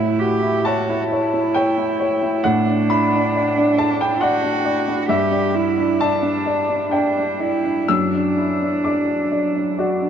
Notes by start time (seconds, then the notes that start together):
Already playing: A2 E4 E5
0.19 F#4 G4
0.43 E4
0.65 F#4 C#5 A5
0.89 E4
1.11 E4 C#5
1.34 E4
1.54 C#5 G5
1.78 E4
2.00 C#5
2.23 E4
2.44 A2 D4 F#5
2.67 D4
2.90 E4 B5
3.14 D4
3.36 D5
3.58 D4
3.78 D5 A5
4.00 D4 G5
4.21 F#4 D5 F#5
4.44 D4
4.65 D5
4.88 D4
5.09 G2 G4 E5
5.31 D4
5.54 E4
5.78 D4
6.00 D4 D5 A5
6.23 D4
6.46 D5
6.69 D4
6.91 D4 D5 G5
7.17 D4
7.40 E4 D5
7.64 D4
7.88 F#2 D4 E6
8.14 D4
8.38 E4
8.62 D4
8.84 D5 D6
9.08 D4
9.32 D5
9.56 D4
9.78 F#4 D5
10.02 D4